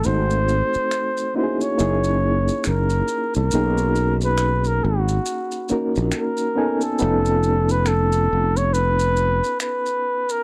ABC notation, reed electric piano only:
X:1
M:4/4
L:1/8
Q:"Swing 16ths" 1/4=69
K:F#dor
V:1 name="Reed electric piano"
[A,B,^B,DFA] z2 [^A,CDEFG] [A,CDEG] z3 | [K:B] [A,CDFG] z4 [A,CDFA] z [B,CD=Ag] | [B,C_E=F=A]3 z4 z |]